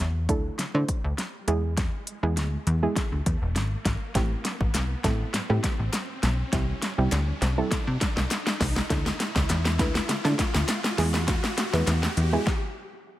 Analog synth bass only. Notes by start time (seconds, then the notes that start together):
0.00 E2
0.29 D2
0.59 D3
0.75 D3
1.04 D2
1.48 E2
2.23 E2
2.37 D2
2.67 E2
3.12 D2
3.26 E2
3.42 E1
3.56 G#1
3.85 G#1
4.15 A1
4.61 A1
4.75 C2
5.04 A1
5.34 A2
5.50 A2
5.79 A1
6.23 B1
6.53 C2
6.98 C2
7.12 D2
7.42 C2
7.71 C3
7.87 C3
8.17 C2
8.61 C2
8.90 D2
9.36 D2
9.50 E2
9.79 D2
10.09 D3
10.25 D3
10.55 D2
10.98 E2
11.73 E2
11.87 E2
12.17 E2